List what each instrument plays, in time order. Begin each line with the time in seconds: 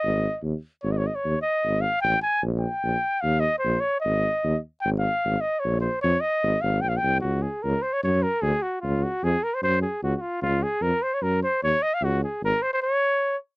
Already playing: trumpet D#5
0.04 tuba G#1
0.43 tuba D#2
0.82 tuba G#1, trumpet C#5
0.92 trumpet D#5
0.98 trumpet C#5
1.07 trumpet D#5
1.15 trumpet C#5
1.25 tuba D#2
1.42 trumpet D#5
1.64 tuba G#1
1.81 trumpet F5
2.01 tuba A1, trumpet G5
2.22 trumpet G#5
2.42 tuba A#1
2.60 trumpet G5
2.83 tuba A#1
3.21 tuba D#2, trumpet F5
3.40 trumpet D#5
3.59 trumpet C5
3.65 tuba A#1
3.80 trumpet C#5
4.00 trumpet D#5
4.04 tuba G#1
4.44 tuba D#2
4.81 tuba G#1, trumpet G5
4.99 trumpet F5
5.25 tuba G#1
5.41 trumpet D#5
5.59 trumpet C#5
5.65 tuba A#1
5.81 trumpet C5
6.02 tuba F2, trumpet C#5
6.21 trumpet D#5
6.43 tuba G#1
6.61 tuba G#1, trumpet F5
6.81 tuba A#1, trumpet G5
6.89 trumpet F5
6.97 trumpet G5
7.03 tuba C2
7.21 tuba C#2, trumpet F#4
7.42 trumpet G#4
7.62 tuba C#2, trumpet A#4
7.82 trumpet C5
7.93 trumpet C#5
8.03 tuba F#2, trumpet C#5
8.23 trumpet A#4
8.42 tuba D2, trumpet G#4
8.62 trumpet F#4
8.81 tuba C#2, trumpet F4
9.03 trumpet F#4
9.24 tuba F2, trumpet G#4
9.43 trumpet A#4
9.54 trumpet C5
9.63 tuba F#2, trumpet C5
9.82 trumpet G#4
10.03 tuba C#2, trumpet F#4
10.17 trumpet F#4
10.21 trumpet F4
10.42 tuba C#2, trumpet F4
10.63 trumpet G#4
10.81 tuba F2, trumpet A#4
11.03 trumpet C5
11.14 trumpet C#5
11.21 tuba F#2, trumpet A#4
11.43 trumpet C5
11.63 tuba D#2, trumpet C#5
11.83 trumpet D#5
11.94 trumpet F5
12.01 tuba C#2, trumpet F#4
12.24 trumpet G#4
12.42 tuba G#1, trumpet A#4
12.62 trumpet C5
12.73 trumpet C5
12.82 trumpet C#5